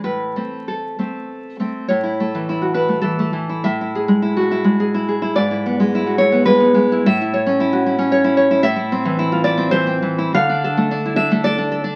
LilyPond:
\new Staff \with { instrumentName = "Nylon-string guitar" } { \time 3/4 \key a \minor \tempo 4 = 106 << { b'4 a'4. r8 | \key a \major cis''4. b'8 a'4 | e''2~ e''8 r8 | d''4. cis''8 b'4 |
e''2~ e''8 r8 | \key a \minor e''4. d''8 c''4 | f''4. e''8 d''4 | } \\ { a,8 <a c'>4 <a c'>4 <a c'>8 | a,16 e'16 a16 e16 e'16 fis'16 e'16 a16 e16 a16 e16 e'16 | a,16 e'16 gis'16 gis16 e'16 fis'16 e'16 gis16 gis'16 e'16 gis'16 e'16 | gis,16 e'16 b16 gis16 e'16 fis'16 e'16 b16 gis16 b16 gis16 e'16 |
a,16 e'16 cis''16 cis'16 e'16 fis'16 e'16 cis'16 cis''16 e'16 cis''16 e'16 | a,16 e'16 c'16 e16 e'16 f'16 e'16 c'16 e16 c'16 e16 e'16 | d16 d'16 a'16 a16 d'16 e'16 d'16 a16 a'16 d'16 a'16 d'16 | } >> }